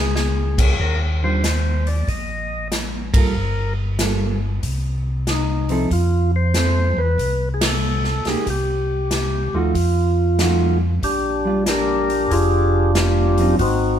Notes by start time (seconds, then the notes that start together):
Already playing: C#2 G#4
0.16 G#4, snare
0.58 kick, crash
0.79 D#2 A#4, kick
1.23 D#3 G3 D4 F4 C5
1.44 snare, closed hi-hat
1.87 D5, open hi-hat
2.08 A#1 D#5, kick, open hi-hat
2.72 snare, closed hi-hat
3.13 G3 A#3 A4 A#4, kick, ride
3.18 F4
3.35 G1
3.99 G3 A#3 F4 A4, snare, closed hi-hat
4.63 C2, kick, open hi-hat
5.27 D#4, snare, closed hi-hat
5.69 F3 C4 E4 A4, open hi-hat
5.91 F2 F4, kick, open hi-hat
6.36 C5
6.54 F3 C4 E4 A4, snare, closed hi-hat
6.97 E2 B4
7.18 C2, kick, open hi-hat
7.54 G#4
7.61 A4, snare, ride
8.04 snare
8.25 C2 A#3 D#4 G#4, snare, open hi-hat
8.29 G4
8.46 C2 G4, kick, open hi-hat
9.11 snare, closed hi-hat
9.53 D#2 F3 A3 D#4 F4 F#4
9.75 F2, kick, open hi-hat
10.39 F3 A3 D#4 F#4, snare, closed hi-hat
11.03 A#1 D4 G4, kick, open hi-hat
11.45 G3 D4 F4
11.66 D4 G4 A#4, snare, closed hi-hat
12.10 open hi-hat
12.31 F1 D4 F4 G#4, kick, open hi-hat
12.95 D4 G4, snare, closed hi-hat
13.38 F#3 C4 D#4, open hi-hat
13.59 G#1 C4 D#4 F#4, kick, open hi-hat